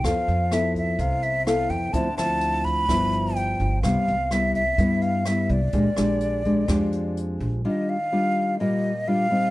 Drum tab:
HH |xxxxxxxx|xxxxxxxx|xxxxxxxx|xxxxxxxx|
SD |r-r---r-|-r--r---|r-r---r-|-r--r---|
BD |o--oo--o|o--oo--o|o--oo--o|o--oo--o|

HH |--------|
SD |--------|
BD |--------|